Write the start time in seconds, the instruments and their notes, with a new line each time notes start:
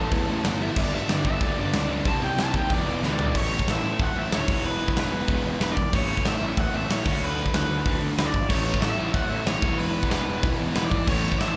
Already playing: distorted electric guitar A2 E3 A3 C#4 E4, overdriven electric guitar A5
0.11 picked electric bass E2, distorted electric guitar A2 E3 A3, kick, open hi-hat
0.26 picked electric bass A1, distorted electric guitar A2 E3 A3 C#4 E4
0.43 picked electric bass G1, distorted electric guitar A2 E3 A3 C#4, snare, open hi-hat
0.47 distorted electric guitar E4
0.60 distorted electric guitar A2 E3 A3, overdriven electric guitar E5
0.75 picked electric bass G1, distorted electric guitar G2 D3 G3 B3 D4, overdriven electric guitar D5, kick, crash
0.92 picked electric bass G1, distorted electric guitar G2 D3 G3, overdriven electric guitar E5
1.08 picked electric bass G1, distorted electric guitar G2 D3 G3, overdriven electric guitar D5, snare, open hi-hat
1.24 picked electric bass G1, distorted electric guitar G2 D3 G3, overdriven electric guitar E5, kick
1.41 picked electric bass D2, distorted electric guitar G2 D3 G3, overdriven electric guitar D5, kick, open hi-hat
1.56 picked electric bass G1, distorted electric guitar G2 D3 G3 B3 D4, overdriven electric guitar D5
1.72 picked electric bass C#2, distorted electric guitar G2 D3 G3 B3 D4, snare, open hi-hat
1.89 distorted electric guitar G2 D3 G3
2.04 picked electric bass C2, distorted electric guitar C3 G3 C4 E4, overdriven electric guitar A5, kick, open hi-hat
2.22 picked electric bass C2, distorted electric guitar C3 G3 C4, overdriven electric guitar G5
2.37 picked electric bass C2, distorted electric guitar C3 G3 C4, overdriven electric guitar A5, snare, open hi-hat
2.53 picked electric bass D#2, distorted electric guitar C3 G3 C4, overdriven electric guitar G5, kick
2.69 picked electric bass E1, distorted electric guitar E2 B2 E3 G#3 B3 E4, overdriven electric guitar D5, kick, open hi-hat
2.85 picked electric bass E1, distorted electric guitar E2 B2 E3
3.01 picked electric bass D2, distorted electric guitar E2 B2 E3, snare
3.06 overdriven electric guitar B4
3.13 overdriven electric guitar D5
3.18 distorted electric guitar E2 B2 E3, floor tom
3.34 picked electric bass A1, distorted electric guitar A2 E3 A3 C#4, overdriven electric guitar C#5, kick, crash
3.38 distorted electric guitar E4
3.59 kick
3.67 picked electric bass A1, overdriven electric guitar E5, snare, open hi-hat
3.79 overdriven electric guitar E5
3.83 picked electric bass A1, distorted electric guitar E3 A3 C#4 E4
3.87 distorted electric guitar A2
3.99 picked electric bass A1, overdriven electric guitar F#5, kick, open hi-hat
4.14 picked electric bass A1, distorted electric guitar A2 E3 A3
4.19 overdriven electric guitar E5
4.31 picked electric bass D2, distorted electric guitar A2 E3 A3, overdriven electric guitar C#5, snare, open hi-hat
4.47 picked electric bass E1, distorted electric guitar E2 B2 E3 G#3 B3 E4, kick, crash
4.63 picked electric bass E1, overdriven electric guitar B4
4.88 kick
4.96 picked electric bass E1, distorted electric guitar E3 G#3 B3 E4, snare, open hi-hat
5.00 overdriven electric guitar B4
5.12 picked electric bass E1
5.28 picked electric bass E1, distorted electric guitar E2 B2 E3, kick, open hi-hat
5.44 picked electric bass E1, distorted electric guitar E2 B2 E3
5.60 picked electric bass E1, overdriven electric guitar B4, snare, open hi-hat
5.72 overdriven electric guitar D5
5.77 picked electric bass E1, kick
5.93 picked electric bass A1, distorted electric guitar A2 E3 A3 C#4 E4, overdriven electric guitar C#5, kick, crash
6.17 kick
6.25 picked electric bass A1, overdriven electric guitar E5, snare, open hi-hat
6.35 overdriven electric guitar E5
6.41 picked electric bass A1, distorted electric guitar A2 E3 A3 C#4 E4
6.57 picked electric bass A1, overdriven electric guitar F#5, kick, open hi-hat
6.73 picked electric bass A1, distorted electric guitar A2 E3 A3, overdriven electric guitar E5
6.89 picked electric bass A1, distorted electric guitar A2 E3 A3, overdriven electric guitar C#5, snare, open hi-hat
7.04 picked electric bass D2, distorted electric guitar D3 A3 D4, kick, crash
7.08 distorted electric guitar F#4
7.21 picked electric bass D2, overdriven electric guitar B4
7.46 kick
7.53 picked electric bass D2, distorted electric guitar D3 A3 D4 F#4, overdriven electric guitar B4, snare, open hi-hat
7.70 picked electric bass D2
7.85 picked electric bass D2, distorted electric guitar D3 A3 D4, kick, open hi-hat
8.02 picked electric bass D2, distorted electric guitar D3 A3 D4
8.18 picked electric bass D2, overdriven electric guitar B4, snare, open hi-hat
8.25 overdriven electric guitar D5
8.34 picked electric bass G#1, kick
8.48 picked electric bass A1, distorted electric guitar A2 E3 A3 C#4, overdriven electric guitar C#5, kick, crash
8.53 distorted electric guitar E4
8.74 kick
8.81 picked electric bass A1, overdriven electric guitar E5, snare, open hi-hat
8.91 overdriven electric guitar E5
8.97 picked electric bass A1, distorted electric guitar A2 E3 A3 C#4 E4
9.14 picked electric bass A1, overdriven electric guitar F#5, kick, open hi-hat
9.29 picked electric bass A1, distorted electric guitar A2 E3 A3, overdriven electric guitar E5
9.46 picked electric bass A1, distorted electric guitar A2 E3 A3, overdriven electric guitar C#5, snare, open hi-hat
9.62 picked electric bass E1, distorted electric guitar E2 B2 E3 G#3 B3 E4, kick
9.66 distorted electric guitar E3
9.78 picked electric bass E1, overdriven electric guitar B4, open hi-hat
10.03 kick
10.10 picked electric bass E1, distorted electric guitar E2 B2 E3 G#3 B3, overdriven electric guitar B4, snare, open hi-hat
10.14 distorted electric guitar E4
10.28 picked electric bass E1
10.43 picked electric bass E1, distorted electric guitar E2 B2 E3, kick, open hi-hat
10.59 picked electric bass E1, distorted electric guitar E2 B2 E3
10.75 picked electric bass E1, overdriven electric guitar B4, snare, open hi-hat
10.85 overdriven electric guitar D5
10.91 picked electric bass G#1, kick
11.06 picked electric bass A1, distorted electric guitar A2 E3 A3 C#4, overdriven electric guitar C#5, kick, crash
11.10 distorted electric guitar E4
11.32 kick
11.39 picked electric bass A1, overdriven electric guitar D5 E5, snare, open hi-hat
11.48 overdriven electric guitar E5